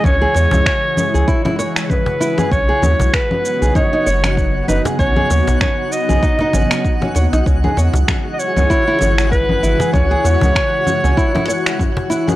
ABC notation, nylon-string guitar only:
X:1
M:4/4
L:1/16
Q:"Swing 16ths" 1/4=97
K:C#m
V:1 name="Nylon-string guitar"
C G c z4 G E E c z3 E G | C G c z4 G D D c z3 D G | C G c z4 G D D C C z C c D | C G c z4 C E E c z3 E G |
C G c z4 C E E c z3 E G |]